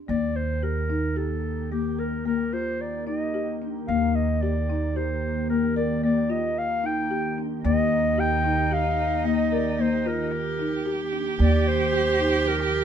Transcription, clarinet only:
0.09 D5
0.36 C5
0.63 A#4
1.17 A4
1.72 G4
1.99 A#4
2.27 A#4
2.53 C5
2.81 D5
3.07 D#5
3.88 F5
4.15 D#5
4.42 D5
4.96 C5
5.50 A#4
5.77 D5
6.04 D5
6.31 D#5
6.58 F5
6.86 G5
7.65 D#5
8.20 G5
8.73 F5
9.27 D#5
9.54 D5
9.81 C5
10.07 A#4
11.40 D5
11.68 C5
12.48 A#4

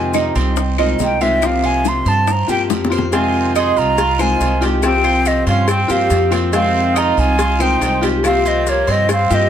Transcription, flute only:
Already playing: G#5
1.04 G5
1.22 E5
1.46 F5
1.66 G#5
1.88 C6
2.08 A5
2.32 A#5
2.51 G5
3.14 G#5
3.57 C6
3.78 A#5
4.21 G#5
4.84 G5
5.27 D#5
5.48 F5
5.70 G5
5.91 F5
6.55 F5
6.98 A#5
7.19 G#5
7.62 G5
8.25 F5
8.48 D#5
8.70 C#5
8.91 D#5
9.13 F5
9.34 D#5

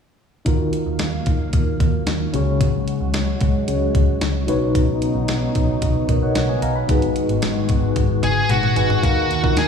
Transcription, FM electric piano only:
0.45 D#3 D#4 F4 F#4 A#4
2.33 C#3 C#4 F#4 G#4 C#5
3.67 C#4 F#4 G#4 C#5
4.47 B2 D#4 F#4 B4 C#5
6.09 A#4 D#5
6.23 C#5 F#5
6.36 C#5 F#5
6.49 D#5 G#5
6.62 F5 A#5
6.76 F#5 B5
6.88 G#2 D#4 F#4 G#4 B4
8.50 F#5
8.76 D#4 F#4 G#4 B4 G#5
9.02 D#3 D#4 F#4 A#4 F5
9.43 D#4 F4 F#4 A#4

